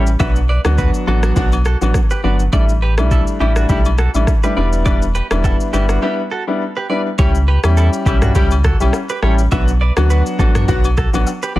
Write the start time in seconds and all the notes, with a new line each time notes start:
Already playing: A1
0.07 shaker
0.19 B1 F#3 B3 D4 F#4 B4 E5, kick, high agogo, shaker
0.36 shaker
0.49 B4 D5
0.65 D2 F#3 B3 D4 F#4, cross-stick, high agogo, shaker
0.78 F#4 B4, kick, shaker
0.94 shaker
1.07 A1 F#3 B3 D4 F#4 A4, high agogo
1.23 D4 F#4, cross-stick, shaker
1.36 B1 F#3 B3 D4 F#4, kick, shaker
1.52 high agogo, shaker
1.65 F#4 A4, cross-stick, shaker
1.81 A1 F#3 B3 D4 F#4, high agogo, shaker
1.94 kick, cross-stick, shaker
2.11 G4 B4, shaker
2.23 G1 F#3 B3 D4 F#4 B4 D5
2.40 shaker
2.52 A1 G3 A3 D4 E4 A4 D5, kick, high agogo, shaker
2.69 shaker
2.82 G4 B4
2.98 B1 G3 A3 D4 E4, cross-stick, high agogo, shaker
3.11 E4 A4, kick, shaker
3.27 shaker
3.40 A1 G3 A3 D4 E4 G4, high agogo
3.56 D4 F#4, cross-stick, shaker
3.69 B1 G3 A3 D4 E4 G4, kick, shaker
3.85 high agogo, shaker
3.98 F#4 A4, cross-stick, shaker
4.14 A1 G3 A3 D4 E4, high agogo, shaker
4.27 kick, cross-stick, shaker
4.43 G3 A3 D4 E4 G4 B4, shaker
4.56 E1 G3 B3 D4 E4 B4 D5
4.73 shaker
4.85 G3 B3 D4 E4 B4 D5, kick, high agogo, shaker
5.02 shaker
5.15 G4 B4, shaker
5.31 E1 G3 B3 D4 E4, cross-stick, high agogo, shaker
5.44 E4 A4, kick, low woodblock, shaker
5.60 shaker
5.73 G1 G3 B3 D4 E4 G4, high agogo, shaker
5.89 D4 F#4, cross-stick, shaker
6.02 G3 B3 D4 E4 G4
6.31 F#4 A4
6.47 G3 B3 D4 E4
6.77 G4 B4
6.89 G3 B3 D4 E4 B4 D5
7.18 C#2 G3 C#4 E4 G4 C#5, kick, high agogo, shaker
7.35 shaker
7.48 G4 B4
7.64 E2 G3 C#4 E4 G4, cross-stick, high agogo, shaker
7.77 E4 A4, shaker
7.93 shaker
8.06 B1 G3 C#4 E4 G4, kick, high agogo, shaker
8.22 D4 F#4, cross-stick, mid tom, shaker
8.35 C#2 G3 C#4 E4 G4, kick, shaker
8.51 high agogo, shaker
8.64 F#4 A4, kick, cross-stick, shaker
8.80 B1 G3 C#4 E4 G4, high agogo, shaker
8.93 cross-stick, low woodblock, shaker
9.09 G4 B4, shaker
9.22 A1 G3 C#4 E4 G4 A4 C#5, cross-stick
9.38 shaker
9.52 B1 F#3 B3 D4 F#4 B4 E5, kick, high agogo, shaker
9.68 shaker
9.81 B4 D5
9.97 D2 F#3 B3 D4 F#4, cross-stick, high agogo, shaker
10.10 F#4 B4, shaker
10.26 shaker
10.39 A1 F#3 B3 D4 F#4 A4, kick, high agogo, shaker
10.55 D4 F#4, cross-stick, mid tom, shaker
10.68 B1 F#3 B3 D4 F#4, kick, shaker
10.84 high agogo, shaker
10.97 F#4 A4, kick, cross-stick, shaker
11.13 A1 F#3 B3 D4 F#4, high agogo, shaker
11.27 low woodblock, shaker
11.43 G4 B4, shaker
11.55 G1 F#3 B3 D4 F#4 D5